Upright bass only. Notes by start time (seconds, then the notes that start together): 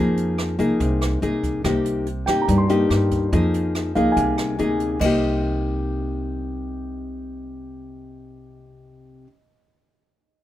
Already playing: F2
0.59 C2
0.80 C2
1.22 C2
1.65 C2
2.27 G2
2.48 G2
2.90 G2
3.33 F2
3.96 C2
4.17 C2
4.59 D2
5.01 C2